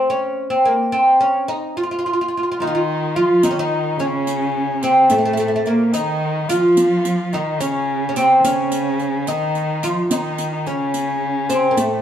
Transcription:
0.10 C#4
0.50 C4
0.65 A#3
0.92 C4
1.21 C#4
1.48 D#4
1.77 F4
1.83 F4
1.91 F4
1.99 F4
2.06 F4
2.13 F4
2.21 F4
2.28 F4
2.37 F4
2.43 F4
2.52 F4
2.59 D#3 D#4 F4
2.67 F4
2.75 F4
3.15 F3 F4
3.43 D#3 D#4, riq
3.51 C#4
3.57 D#3 D#4
3.97 C#3 C#4, riq
4.06 C4
4.14 C#4
4.27 riq
4.81 C3 C4, riq
5.09 A2 A3, riq
5.18 A3
5.25 A3
5.33 A3, riq
5.40 A3
5.48 A3
5.56 A3
5.64 A#2 A#3, riq
5.92 D#3 D#4, riq
6.48 F3 F4, riq
6.77 riq
7.05 riq
7.32 D#3 D#4, riq
7.60 C#3 C#4, riq
8.09 C#4
8.16 C3 C4, riq
8.40 D#3 C#4
8.45 C#3 C#4, riq
8.72 riq
8.99 riq
9.27 D#3 D#4, riq
9.55 riq
9.83 F3 F4, riq
10.10 D#3 D#4, riq
10.38 riq
10.52 D#4
10.66 C#3 C#4, riq
10.94 riq
11.49 C3 C4, riq
11.71 A#3
11.77 A2 A3, riq

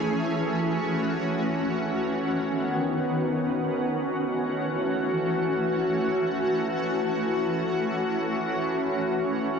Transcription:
Already playing: E3 A3 C#4
0.06 F#4
1.97 D#3 B3
3.90 E3 A3
7.73 C#4

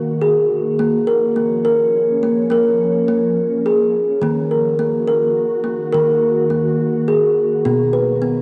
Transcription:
Already playing: D#3 A#3 F#4
0.22 G#4
0.79 F3 A#3 C#4
1.07 A#4
1.36 A#3
1.65 A#4
2.23 A#3
2.50 A#3 A#4
3.08 A#3
3.66 G#4
4.20 D#3 A#3 F#4
4.51 A#4
4.79 A#3
5.08 A#4
5.64 A#3
5.92 D#3 A#4
6.50 A#3
7.08 G#4
7.64 B2 F#3 B3 D#4
7.93 B4
8.22 B3

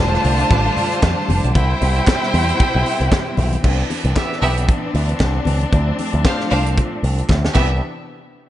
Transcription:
Already playing: D3 G3 A3 D4 F4 C5 A5
0.00 E1
0.14 snare
0.24 C2, open hi-hat
0.39 closed hi-hat
0.50 A1, kick, closed hi-hat, muted conga
0.77 open hi-hat, low conga
0.92 closed hi-hat
1.03 F2, kick, snare, clap, closed hi-hat, high conga
1.28 F1, open hi-hat, high conga
1.44 B1, closed hi-hat
1.54 C2 B2 C3 E4 C5 G5, kick, closed hi-hat, muted conga
1.81 C2, open hi-hat, muted conga
1.96 closed hi-hat
2.07 kick, snare, clap, closed hi-hat, high conga
2.23 snare
2.34 E2, open hi-hat
2.49 closed hi-hat
2.60 kick, closed hi-hat
2.75 B1
2.86 open hi-hat
3.00 C2, closed hi-hat
3.12 kick, snare, clap, closed hi-hat, high conga
3.37 B1, open hi-hat, high conga
3.52 closed hi-hat, high conga
3.63 C2 E3 B3 C4 D4, kick, crash, muted conga
3.90 open hi-hat, muted conga
4.04 C2, closed hi-hat
4.16 B3 G4 E5, kick, snare, clap, closed hi-hat, high conga
4.32 snare
4.42 B1 B3 G4 E5, open hi-hat
4.57 closed hi-hat
4.69 kick, closed hi-hat
4.94 D2, open hi-hat
5.09 closed hi-hat
5.20 C2, kick, snare, clap, closed hi-hat, high conga
5.45 C#2, open hi-hat, high conga
5.61 closed hi-hat
5.73 D2 F3 A3, kick, closed hi-hat, muted conga
5.99 open hi-hat, muted conga
6.13 D2, closed hi-hat
6.24 D4 C5 F5, kick, snare, clap, closed hi-hat, high conga
6.40 snare
6.51 C2 D4 C5 F5, open hi-hat
6.66 closed hi-hat
6.77 kick, closed hi-hat
7.03 C2, open hi-hat
7.18 closed hi-hat
7.29 D2, kick, snare, clap, high conga
7.45 snare
7.55 C2 C3 E3 B3 D4 G4 E5, kick, clap, crash, muted conga

